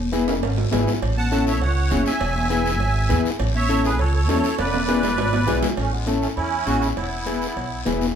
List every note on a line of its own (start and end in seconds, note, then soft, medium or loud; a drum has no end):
0.00 0.43 E1 loud
0.12 0.33 B3 medium
0.12 0.34 E4 medium
0.12 0.34 G#4 medium
0.12 cowbell medium
0.12 high conga medium
0.12 short guiro medium
0.28 high timbale medium
0.28 short guiro medium
0.43 0.67 G#1 medium
0.43 cowbell medium
0.43 high timbale loud
0.43 long guiro medium
0.57 low timbale medium
0.71 0.84 G#1 medium
0.71 0.93 B3 medium
0.71 0.93 E4 medium
0.71 0.93 G#4 loud
0.71 cowbell medium
0.71 high conga medium
0.71 low conga medium
0.71 low timbale loud
0.71 short guiro medium
0.87 low timbale medium
0.87 short guiro medium
1.02 1.61 A1 loud
1.02 cowbell loud
1.02 long guiro medium
1.17 1.45 F#5 medium
1.17 1.45 A5 loud
1.17 high conga medium
1.31 1.52 C#4 medium
1.31 1.53 E4 medium
1.31 1.53 A4 medium
1.31 cowbell medium
1.31 high conga medium
1.31 short guiro medium
1.47 1.61 C#5 medium
1.47 1.61 E5 medium
1.47 short guiro medium
1.61 1.93 C#2 medium
1.61 2.04 C#5 medium
1.61 2.03 F#5 medium
1.61 cowbell medium
1.61 long guiro medium
1.91 2.03 F#1 loud
1.91 2.12 C#4 medium
1.91 2.12 E4 medium
1.91 2.12 G#4 medium
1.91 cowbell medium
1.91 high conga medium
1.91 short guiro medium
2.06 3.21 E5 medium
2.06 3.21 G#5 medium
2.06 short guiro medium
2.21 2.80 E1 loud
2.21 cowbell loud
2.21 long guiro medium
2.36 high conga medium
2.50 2.71 B3 medium
2.50 2.71 E4 medium
2.50 2.71 G#4 medium
2.50 cowbell medium
2.50 high conga medium
2.50 short guiro medium
2.66 short guiro medium
2.80 3.11 G#1 loud
2.80 cowbell medium
2.80 long guiro medium
3.09 3.22 E2 loud
3.09 3.30 B3 medium
3.09 3.31 E4 medium
3.09 3.31 G#4 loud
3.09 cowbell medium
3.09 high conga medium
3.09 low conga medium
3.09 short guiro medium
3.25 short guiro medium
3.39 3.99 A1 loud
3.39 cowbell loud
3.39 long guiro medium
3.54 3.83 C#5 medium
3.54 3.83 E5 loud
3.54 high conga medium
3.69 3.90 C#4 medium
3.69 3.90 E4 medium
3.69 3.90 A4 medium
3.69 cowbell medium
3.69 high conga medium
3.69 short guiro medium
3.84 3.99 G#4 medium
3.84 4.00 B4 medium
3.84 short guiro medium
3.99 4.29 C#2 medium
3.99 4.13 A4 medium
3.99 4.13 C#5 medium
3.99 cowbell medium
3.99 long guiro medium
4.15 4.28 A4 medium
4.15 4.28 C#5 medium
4.28 4.41 E2 medium
4.28 4.49 C#4 medium
4.28 4.50 E4 medium
4.28 4.50 A4 medium
4.28 4.57 A4 medium
4.28 4.57 C#5 loud
4.28 cowbell medium
4.28 high conga medium
4.28 low timbale medium
4.28 short guiro medium
4.44 short guiro medium
4.58 5.18 E1 loud
4.58 5.59 B4 medium
4.58 5.59 D5 loud
4.58 cowbell loud
4.58 high timbale loud
4.58 long guiro medium
4.74 high conga medium
4.74 low conga medium
4.74 high timbale medium
4.88 5.09 B3 medium
4.88 5.09 E4 medium
4.88 5.09 G#4 medium
4.88 cowbell medium
4.88 high conga medium
4.88 high timbale medium
4.88 short guiro medium
5.03 high conga medium
5.03 low timbale loud
5.03 short guiro medium
5.17 5.48 G#1 loud
5.17 cowbell medium
5.17 low timbale loud
5.17 long guiro medium
5.33 high conga loud
5.33 low timbale loud
5.47 5.60 B1 loud
5.47 5.68 B3 medium
5.47 5.68 E4 medium
5.47 5.68 G#4 loud
5.47 cowbell medium
5.47 low conga medium
5.47 low timbale loud
5.47 short guiro medium
5.62 low conga medium
5.62 low timbale medium
5.62 short guiro medium
5.77 6.25 A1 loud
5.77 5.92 A3 medium
5.77 5.93 C#4 medium
5.77 cowbell loud
5.77 high conga soft
5.77 long guiro medium
5.92 6.07 G#3 medium
5.92 6.06 B3 medium
5.92 high conga soft
6.06 6.14 E3 medium
6.06 6.14 A3 medium
6.06 6.28 C#4 medium
6.06 6.28 E4 medium
6.06 6.28 A4 medium
6.06 cowbell medium
6.06 high conga loud
6.06 short guiro medium
6.21 6.30 A3 medium
6.21 6.28 C#4 medium
6.21 short guiro medium
6.36 6.61 E2 medium
6.36 6.65 C#4 medium
6.36 6.67 E4 loud
6.36 cowbell medium
6.36 long guiro medium
6.66 6.91 A1 medium
6.66 6.88 C#4 medium
6.66 6.81 C#4 medium
6.66 6.88 E4 medium
6.66 6.82 F#4 loud
6.66 6.88 G#4 medium
6.66 cowbell medium
6.66 high conga medium
6.66 short guiro medium
6.81 6.89 C#4 medium
6.81 6.88 E4 medium
6.81 high conga medium
6.81 short guiro medium
6.96 7.45 E1 medium
6.96 7.83 B3 medium
6.96 7.82 E4 medium
6.96 cowbell medium
6.96 long guiro medium
7.12 high conga soft
7.26 7.47 B3 medium
7.26 7.48 E4 medium
7.26 7.48 G#4 medium
7.26 cowbell medium
7.26 high conga loud
7.26 short guiro medium
7.42 short guiro medium
7.56 7.80 B1 medium
7.56 cowbell medium
7.56 long guiro medium
7.85 8.10 E1 medium
7.85 8.07 B3 medium
7.85 8.07 E4 medium
7.85 8.07 G#4 loud
7.85 cowbell medium
7.85 high conga medium
7.85 low conga medium
7.85 low timbale medium
7.85 short guiro medium
8.01 high conga medium
8.01 short guiro medium